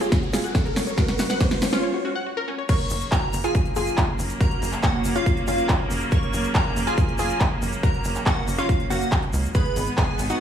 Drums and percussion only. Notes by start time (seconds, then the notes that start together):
0.01 closed hi-hat, shaker
0.12 kick, snare, closed hi-hat, shaker
0.23 closed hi-hat
0.34 snare, open hi-hat, shaker
0.44 closed hi-hat, shaker
0.55 kick, snare, closed hi-hat, shaker
0.66 closed hi-hat
0.76 snare, open hi-hat, shaker
0.87 closed hi-hat, shaker
0.98 kick, snare, closed hi-hat, shaker
1.08 snare, closed hi-hat
1.19 snare, open hi-hat, shaker
1.29 snare, shaker
1.41 kick, snare, closed hi-hat, shaker
1.51 snare, closed hi-hat
1.62 snare, open hi-hat, shaker
1.72 snare, closed hi-hat, shaker
2.69 kick, closed hi-hat, crash, shaker
2.80 closed hi-hat
2.90 open hi-hat, shaker
3.01 closed hi-hat, shaker
3.12 kick, clap, closed hi-hat, shaker
3.33 open hi-hat, shaker
3.44 closed hi-hat, shaker
3.55 kick, closed hi-hat, shaker
3.65 closed hi-hat
3.76 open hi-hat, shaker
3.87 closed hi-hat, shaker
3.98 kick, clap, closed hi-hat, shaker
4.19 open hi-hat, shaker
4.30 closed hi-hat, shaker
4.41 kick, closed hi-hat, shaker
4.51 closed hi-hat
4.62 open hi-hat, shaker
4.73 clap, closed hi-hat, shaker
4.83 kick, clap, closed hi-hat, shaker
5.05 open hi-hat, shaker
5.16 closed hi-hat, shaker
5.26 kick, closed hi-hat, shaker
5.37 closed hi-hat
5.47 open hi-hat, shaker
5.58 closed hi-hat, shaker
5.69 kick, clap, closed hi-hat, shaker
5.91 open hi-hat, shaker
6.01 closed hi-hat, shaker
6.11 kick, closed hi-hat, shaker
6.23 closed hi-hat
6.33 open hi-hat, shaker
6.44 closed hi-hat, shaker
6.55 kick, clap, closed hi-hat, shaker
6.76 open hi-hat, shaker
6.87 closed hi-hat, shaker
6.98 kick, closed hi-hat, shaker
7.09 closed hi-hat
7.19 open hi-hat, shaker
7.30 closed hi-hat, shaker
7.40 kick, clap, closed hi-hat, shaker
7.62 open hi-hat, shaker
7.73 closed hi-hat, shaker
7.83 kick, closed hi-hat, shaker
7.94 closed hi-hat
8.04 open hi-hat, shaker
8.15 clap, closed hi-hat, shaker
8.26 kick, clap, closed hi-hat, shaker
8.48 open hi-hat, shaker
8.58 closed hi-hat, shaker
8.69 kick, closed hi-hat, shaker
8.80 closed hi-hat
8.90 open hi-hat, shaker
9.01 closed hi-hat, shaker
9.12 kick, clap, closed hi-hat, shaker
9.23 closed hi-hat
9.33 open hi-hat, shaker
9.44 closed hi-hat, shaker
9.54 kick, closed hi-hat, ride, shaker
9.65 closed hi-hat
9.76 open hi-hat, ride, shaker
9.87 closed hi-hat, shaker
9.98 kick, clap, closed hi-hat, ride, shaker
10.19 open hi-hat, ride, shaker
10.30 closed hi-hat, shaker